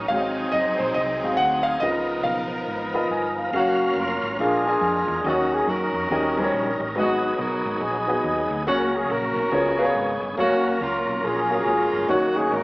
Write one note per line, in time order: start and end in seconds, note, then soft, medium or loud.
0.00 3.50 D#4 medium
0.08 0.47 G#1 medium
0.08 0.76 G#2 medium
0.08 1.78 F#3 medium
0.08 1.81 F#3 medium
0.08 1.81 G#3 medium
0.08 1.78 C4 medium
0.08 0.56 C4 medium
0.08 1.80 C4 medium
0.08 1.78 D#4 medium
0.08 0.56 F#4 medium
0.08 1.78 G#4 medium
0.08 0.56 G#4 medium
0.08 0.17 C#5 medium
0.08 0.49 F5 medium
0.17 0.59 D#5 medium
0.52 0.76 F#1 medium
0.52 0.77 D#5 medium
0.78 0.94 A#1 medium
0.78 0.96 C5 medium
0.94 1.19 C2 medium
0.94 1.40 D#5 medium
1.22 1.37 G#1 medium
1.22 1.54 C4 medium
1.22 1.55 F#4 medium
1.22 1.55 G#4 medium
1.22 1.55 F5 medium
1.37 1.75 D2 medium
1.37 1.66 F#5 loud
1.63 1.81 F5 medium
1.80 2.18 C#2 medium
1.80 2.48 C#3 medium
1.80 3.52 F3 medium
1.80 3.51 F3 medium
1.80 2.28 B3 medium
1.80 3.52 B3 medium
1.80 3.51 B3 medium
1.80 3.51 D#4 medium
1.80 2.28 F4 medium
1.80 3.50 A#4 medium
1.80 3.52 A#4 medium
1.80 2.28 A#4 medium
1.80 2.25 D#5 medium
1.80 2.28 D#5 medium
2.24 2.61 B1 medium
2.24 3.06 F5 medium
2.68 3.04 G#1 medium
2.94 3.26 B3 medium
2.94 3.26 F4 medium
2.94 3.26 A#4 medium
2.94 3.27 D#5 medium
2.94 3.10 B5 medium
3.10 3.47 G1 medium
3.10 3.36 G#5 medium
3.38 3.53 F5 medium
3.53 3.90 F#1 loud
3.53 4.38 F#3 medium
3.53 4.36 A#3 medium
3.53 3.99 C#4 medium
3.53 4.38 C#4 medium
3.53 3.95 C#4 medium
3.53 3.99 F#4 medium
3.53 3.94 F#4 medium
3.53 4.37 A#4 medium
3.53 3.99 A#4 medium
3.53 4.38 F5 medium
3.53 4.00 F5 medium
3.96 4.19 F1 medium
3.96 4.36 C#4 medium
3.96 4.37 F4 medium
3.96 4.37 A#4 medium
4.23 4.37 G#1 medium
4.39 4.75 A#1 loud
4.39 5.05 A#2 medium
4.39 5.23 G#3 medium
4.39 4.46 C#4 soft
4.39 4.61 D4 medium
4.39 5.21 D4 medium
4.39 5.21 F4 medium
4.39 5.23 F4 medium
4.39 4.61 G#4 medium
4.39 5.25 G#4 medium
4.39 5.23 A#4 medium
4.39 4.61 A#4 medium
4.39 4.61 F5 medium
4.44 5.26 D4 medium
4.65 4.97 D4 medium
4.65 4.97 G#4 medium
4.65 4.98 A#4 medium
4.65 4.98 G#5 medium
4.81 5.04 F2 loud
5.08 5.22 E2 medium
5.24 5.61 D#2 loud
5.24 5.91 D#3 medium
5.24 6.09 F#3 medium
5.24 6.07 A#3 medium
5.24 6.09 C#4 medium
5.24 5.70 C#4 medium
5.24 5.67 C#4 medium
5.24 6.09 D#4 medium
5.24 5.71 F#4 medium
5.24 5.52 F#4 medium
5.24 5.31 A4 medium
5.24 5.71 A#4 medium
5.24 5.71 D#5 medium
5.30 6.11 A#4 medium
5.53 5.68 G#4 medium
5.67 5.90 F#2 medium
5.67 6.76 C#4 medium
5.67 6.76 F#4 medium
5.67 6.80 A#4 loud
5.94 6.08 F2 loud
6.10 6.47 D#2 medium
6.10 6.76 D#3 medium
6.10 6.94 G3 medium
6.10 6.94 C#4 medium
6.10 6.32 C#4 medium
6.10 6.94 D#4 medium
6.10 6.32 G4 medium
6.10 6.17 G#4 medium
6.10 6.32 A#4 medium
6.10 6.33 D#5 medium
6.16 6.97 A#4 medium
6.37 6.69 G3 medium
6.37 6.69 C#4 medium
6.37 6.69 A#4 medium
6.37 6.42 C5 medium
6.44 6.72 C#5 medium
6.54 6.76 A#1 loud
6.80 6.94 A1 medium
6.95 7.32 G#1 loud
6.95 7.62 G#2 medium
6.95 8.63 F#3 medium
6.95 8.63 B3 medium
6.95 7.41 B3 medium
6.95 7.78 B3 medium
6.95 8.63 D#4 medium
6.95 7.38 D#4 medium
6.95 7.42 F#4 medium
6.95 7.36 F#4 medium
6.95 8.63 G#4 medium
6.95 7.42 G#4 medium
6.95 7.42 D#5 medium
7.39 7.61 B1 loud
7.39 7.80 D#4 medium
7.39 8.20 F#4 medium
7.39 7.82 A#4 loud
7.65 7.79 G#1 medium
7.81 8.18 A#1 medium
7.81 8.63 B3 medium
7.81 8.63 D#4 medium
7.81 8.67 G#4 medium
8.07 8.39 B3 medium
8.07 8.39 F#4 medium
8.07 8.40 G#4 medium
8.07 8.40 D#5 medium
8.24 8.47 D#2 medium
8.51 8.65 D2 medium
8.66 9.03 C#2 loud
8.66 9.33 C#3 medium
8.66 9.51 F#3 medium
8.66 9.12 A#3 medium
8.66 9.49 A#3 medium
8.66 9.51 A#3 medium
8.66 9.09 C#4 medium
8.66 9.51 C#4 medium
8.66 9.13 C#4 medium
8.66 8.91 F#4 medium
8.66 9.13 F#4 medium
8.66 9.51 A#4 medium
8.66 9.13 C#5 medium
8.94 9.10 G#4 medium
9.09 9.32 A#1 medium
9.09 10.18 C#4 medium
9.09 10.18 F#4 medium
9.09 10.22 A#4 loud
9.36 9.50 B1 medium
9.51 9.89 C#2 medium
9.51 10.18 C#3 medium
9.51 10.36 G#3 medium
9.51 10.36 B3 medium
9.51 9.74 B3 medium
9.51 10.36 C#4 medium
9.51 9.74 F4 medium
9.51 10.36 G#4 medium
9.51 9.74 G#4 medium
9.51 9.75 C#5 medium
9.78 10.10 B3 medium
9.78 10.10 G#4 medium
9.78 9.83 B4 medium
9.78 10.10 F5 medium
9.85 10.14 C#5 medium
9.95 10.18 G#1 medium
10.22 10.36 G1 medium
10.37 10.74 F#1 loud
10.37 12.05 F#3 medium
10.37 10.44 A3 medium
10.37 12.05 A#3 medium
10.37 11.20 A#3 medium
10.37 12.05 C#4 medium
10.37 10.80 C#4 medium
10.37 10.78 F#4 medium
10.37 10.83 F#4 medium
10.37 12.05 A#4 medium
10.37 10.84 C#5 medium
10.37 10.83 F5 medium
10.42 10.85 A#3 medium
10.81 11.04 C#2 medium
10.81 11.23 C#4 medium
10.81 11.23 F4 medium
10.81 11.23 A#4 medium
11.07 11.21 B1 loud
11.23 11.60 A#1 medium
11.23 12.05 C#4 medium
11.23 12.05 F4 medium
11.23 12.09 G#4 medium
11.50 11.82 F#3 medium
11.50 11.81 A#3 medium
11.50 11.81 F4 medium
11.50 11.82 A#4 medium
11.66 11.89 G#1 medium
11.93 12.07 G1 medium
12.08 12.45 F#1 loud
12.08 12.63 D#3 medium
12.08 12.54 A#3 medium
12.08 12.63 A#3 medium
12.08 12.63 C#4 medium
12.08 12.50 C#4 medium
12.08 12.54 D#4 medium
12.08 12.35 F#4 medium
12.08 12.63 F#4 medium
12.08 12.54 F#4 medium
12.08 12.55 C#5 medium
12.35 12.51 G#4 medium
12.51 12.63 G#1 medium
12.51 12.63 C#4 medium
12.51 12.63 D#4 medium
12.51 12.63 A#4 loud